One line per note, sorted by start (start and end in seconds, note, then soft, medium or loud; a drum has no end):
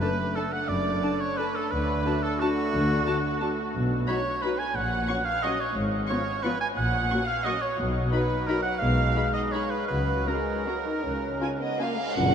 0.00 0.15 F#2 medium
0.00 1.68 A3 medium
0.00 1.68 D4 medium
0.00 0.09 D4 medium
0.00 0.09 A4 soft
0.00 0.37 B4 medium
0.00 0.34 B4 medium
0.00 0.08 A5 soft
0.35 0.44 D4 medium
0.35 0.42 A4 medium
0.35 0.54 A4 medium
0.35 0.44 A4 medium
0.35 0.45 A5 soft
0.52 0.68 F#5 medium
0.52 0.70 F#5 medium
0.68 0.97 F#1 medium
0.68 0.97 F#2 medium
0.68 1.21 D5 medium
1.03 1.11 D4 medium
1.03 1.11 A4 soft
1.03 1.12 A5 soft
1.20 1.39 C#5 medium
1.20 1.38 C#5 medium
1.37 1.46 D4 medium
1.37 1.47 A4 medium
1.37 1.56 B4 medium
1.37 1.55 B4 medium
1.37 1.47 A5 medium
1.55 1.72 A4 medium
1.71 2.00 D2 medium
1.71 2.00 D3 medium
1.71 3.71 A3 medium
1.71 3.71 D4 medium
1.71 2.24 B4 medium
1.71 2.22 B4 medium
2.05 2.13 D4 medium
2.05 2.13 F#4 medium
2.05 2.15 A5 soft
2.22 2.41 A4 medium
2.40 2.49 D4 medium
2.40 3.74 F#4 medium
2.40 3.71 F#4 medium
2.40 2.49 F#4 medium
2.40 2.49 A5 medium
2.74 3.01 D2 medium
2.74 3.02 D3 medium
3.07 3.15 D4 medium
3.07 3.15 F#4 medium
3.07 3.15 A5 medium
3.41 3.50 D4 medium
3.41 3.50 F#4 medium
3.41 3.49 A5 medium
3.74 4.02 B1 medium
3.74 4.02 B2 medium
4.07 4.20 F#3 medium
4.07 4.21 D#4 medium
4.07 4.17 D#4 medium
4.07 4.17 F#4 medium
4.07 4.44 C#5 medium
4.07 4.41 C#5 medium
4.07 4.15 B5 medium
4.42 4.55 F#3 medium
4.42 4.55 D#4 medium
4.42 4.51 D#4 medium
4.42 4.52 F#4 medium
4.42 4.60 B4 medium
4.42 4.59 B4 medium
4.42 4.50 B5 medium
4.59 4.76 G#5 medium
4.59 4.66 G#5 medium
4.75 5.03 A#1 medium
4.75 5.03 A#2 medium
4.75 5.26 F#5 medium
4.75 5.25 F#5 medium
5.08 5.21 F#3 medium
5.08 5.21 C#4 medium
5.08 5.17 C#4 medium
5.08 5.17 F#4 medium
5.08 5.16 C#6 medium
5.25 5.44 F5 medium
5.25 5.43 F5 medium
5.43 5.56 F#3 medium
5.43 5.56 C#4 medium
5.43 5.52 C#4 medium
5.43 5.53 F#4 medium
5.43 5.62 D#5 medium
5.43 5.60 D#5 medium
5.43 5.51 C#6 medium
5.60 5.76 C#5 medium
5.76 6.03 G#1 medium
5.76 6.04 G#2 medium
6.09 6.22 F3 medium
6.09 6.18 B3 medium
6.09 6.22 C#4 medium
6.09 6.18 F4 medium
6.09 6.41 C#5 medium
6.09 6.45 C#5 medium
6.09 6.17 C#6 medium
6.43 6.56 F3 medium
6.43 6.52 B3 medium
6.43 6.56 C#4 medium
6.43 6.52 F4 medium
6.43 6.60 B4 medium
6.43 6.61 B4 medium
6.43 6.51 C#6 medium
6.61 6.68 G#5 medium
6.77 7.05 A#1 medium
6.77 7.05 A#2 medium
6.77 7.29 F#5 medium
6.77 7.28 F#5 medium
7.10 7.23 F#3 medium
7.10 7.20 A#3 medium
7.10 7.23 C#4 medium
7.10 7.19 F#4 medium
7.10 7.18 C#6 medium
7.27 7.46 F5 medium
7.44 7.57 F#3 medium
7.44 7.54 A#3 medium
7.44 7.57 C#4 medium
7.44 7.53 F#4 medium
7.44 7.63 D#5 medium
7.44 7.62 D#5 medium
7.44 7.52 C#6 medium
7.61 7.78 C#5 medium
7.61 7.79 C#5 medium
7.78 8.06 B1 medium
7.78 8.07 B2 medium
7.78 8.10 F#3 medium
7.78 8.10 D#4 medium
8.11 8.80 F#3 medium
8.11 8.80 D#4 medium
8.11 8.20 D#4 medium
8.11 8.20 F#4 medium
8.11 8.48 B4 medium
8.11 8.46 B4 medium
8.11 8.20 B5 medium
8.47 8.56 D#4 medium
8.47 8.56 F#4 medium
8.47 8.62 A#4 medium
8.47 8.64 A#4 medium
8.47 8.57 B5 soft
8.62 8.80 F#5 medium
8.62 8.81 F#5 medium
8.79 9.09 B1 medium
8.79 9.09 B2 medium
8.79 9.90 G#3 medium
8.79 9.87 D#4 medium
8.79 9.33 F5 medium
8.79 9.32 F5 medium
9.15 9.23 D#4 soft
9.15 9.24 G#4 soft
9.15 9.24 B5 soft
9.33 9.41 D#5 medium
9.33 9.53 D#5 medium
9.51 9.61 D#4 soft
9.51 9.61 G#4 soft
9.51 9.72 C#5 medium
9.51 9.71 C#5 medium
9.51 9.61 B5 soft
9.71 9.87 B4 medium
9.88 10.21 C#2 medium
9.88 10.21 C#3 medium
9.88 10.27 F#3 medium
9.88 10.27 F#4 medium
9.88 10.29 B4 medium
9.88 10.27 B4 medium
10.27 10.65 G#3 medium
10.27 10.36 C#4 soft
10.27 10.36 F#4 soft
10.27 11.80 A#4 medium
10.27 10.35 A#5 soft
10.66 10.86 F#3 medium
10.66 10.76 C#4 soft
10.66 10.76 F#4 soft
10.66 10.76 A#5 soft
10.85 11.04 D#4 medium
11.03 11.35 C#2 medium
11.03 11.35 C#3 medium
11.03 11.60 C#4 medium
11.41 11.49 C#4 soft
11.41 11.49 F4 soft
11.41 11.50 G#5 soft
11.61 11.80 B3 medium
11.61 11.79 D#5 medium
11.79 11.98 A#3 medium
11.79 11.88 C#4 soft
11.79 11.88 F4 soft
11.79 12.17 F5 medium
11.79 11.88 G#5 soft
11.98 12.16 G#3 medium
12.17 12.35 F#1 medium
12.17 12.35 F#2 medium
12.17 12.35 F#5 medium
12.17 tam-tam medium